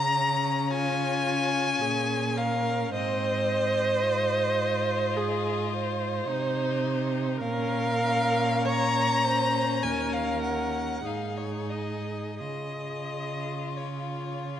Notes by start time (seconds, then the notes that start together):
Already playing: C#3 C#4 A#5
0.70 F4 G#5
1.82 A#2 G#4
2.37 A#4 F5
2.93 G#2 C4 C5 D#5
4.04 F4
5.17 G#4
5.73 C5
6.27 C3 D#4
7.40 A#2 C#4 A#4 F5
8.02 C#4
8.65 C#5 A#5
9.25 C5
9.83 D#2 A#4 G#5
10.13 F5
10.42 F#5
11.06 G#2 D#4 G#4 F5
11.37 C#5
11.70 D#5
12.39 C#3 F4 G#4 D#5
13.77 F4 C#5